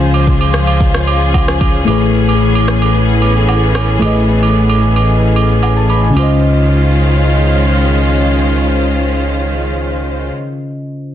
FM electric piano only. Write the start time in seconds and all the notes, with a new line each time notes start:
Already playing: C#3 C#4 F4 C5 F5
1.85 A3 E4 G#4
1.90 B4 C#5
3.99 A3 E4 G#4
4.04 B4 D#5
5.63 G#5
5.77 A5
5.90 B5
6.04 G#5
6.10 C#3 C#4
6.16 F4 C5
6.23 D#5